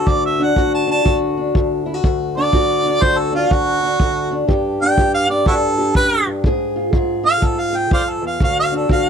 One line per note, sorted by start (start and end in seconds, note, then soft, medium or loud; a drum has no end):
0.00 0.39 D4 medium
0.00 0.57 F#4 medium
0.07 0.56 D2 medium
0.07 0.24 D5 medium
0.07 kick medium
0.26 0.45 E5 medium
0.40 0.87 D4 medium
0.40 0.74 F#5 medium
0.56 1.04 D2 medium
0.56 1.04 F#4 medium
0.56 kick medium
0.74 0.90 A5 medium
0.87 1.37 D4 medium
0.87 1.16 A5 loud
1.04 1.55 D2 medium
1.04 1.85 F#4 medium
1.04 kick medium
1.37 2.37 D4 medium
1.55 2.03 D2 medium
1.55 kick medium
1.86 1.94 E4 medium
1.94 2.53 F#4 medium
2.04 2.52 D2 medium
2.04 kick medium
2.37 2.85 D4 medium
2.37 3.04 D5 loud
2.53 3.00 D2 medium
2.53 3.01 F#4 medium
2.53 kick medium
2.85 3.32 D4 medium
3.02 3.48 D2 medium
3.02 4.47 F#4 medium
3.02 3.19 C5 loud
3.02 kick medium
3.18 3.34 A4 loud
3.32 3.82 D4 medium
3.32 3.54 F4 medium
3.49 3.99 D2 medium
3.49 4.47 F#4 loud
3.49 kick medium
3.82 4.30 D4 medium
4.00 4.47 D2 medium
4.00 kick medium
4.31 4.81 D4 medium
4.48 4.97 G2 medium
4.48 4.98 G4 medium
4.48 kick medium
4.82 5.29 D4 medium
4.82 5.14 G5 loud
4.98 5.46 G2 medium
4.98 5.77 G4 medium
4.98 kick medium
5.14 5.30 F5 loud
5.30 6.49 D4 medium
5.30 5.46 D5 medium
5.46 5.96 G2 medium
5.46 5.54 E4 medium
5.46 5.55 F#4 medium
5.46 5.95 A4 loud
5.46 kick medium
5.78 6.43 G4 medium
5.95 6.25 F#2 medium
5.95 6.26 B4 loud
5.95 kick medium
6.26 6.45 G2 medium
6.44 6.92 G#2 medium
6.44 6.92 G#4 medium
6.44 kick medium
6.76 7.22 F4 medium
6.93 7.39 G#2 medium
6.93 7.71 G#4 medium
6.93 kick medium
7.23 8.38 F4 medium
7.23 7.46 F5 loud
7.41 7.90 G#2 medium
7.41 kick medium
7.45 7.61 A4 loud
7.60 7.78 F5 loud
7.73 8.38 G#4 medium
7.77 7.92 G5 medium
7.90 8.21 F2 medium
7.90 8.02 C5 medium
7.90 8.02 D5 medium
7.90 8.12 F5 medium
7.90 kick medium
8.10 8.25 A4 medium
8.22 8.40 E2 medium
8.27 8.41 F5 medium
8.40 8.89 D2 medium
8.40 8.90 F#4 medium
8.40 8.58 F5 loud
8.40 kick medium
8.60 8.74 F5 loud
8.72 9.10 D4 medium
8.76 8.91 A4 medium
8.89 9.10 D2 medium
8.89 9.10 F#4 medium
8.89 9.07 F5 medium
8.89 kick medium